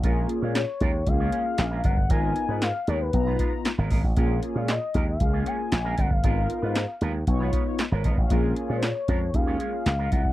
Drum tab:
HH |x-x-x-x-x-x-x-x-|x-x-x-x-x-x-x-o-|x-x-x-x-x-x-x-x-|x-x-x-x-x-x-x-x-|
CP |----x-------x---|----x-------x---|----x-------x---|----x-------x---|
SD |----o-------o---|----o-------o---|----o-------o---|----o-------o---|
BD |o-----o-o-----oo|o-------o-o---oo|o-----o-o-----oo|o-------o-o---oo|

HH |x-x-x-x-x-x-x-x-|
CP |----x-------x---|
SD |----o-------o---|
BD |o-----o-o-----oo|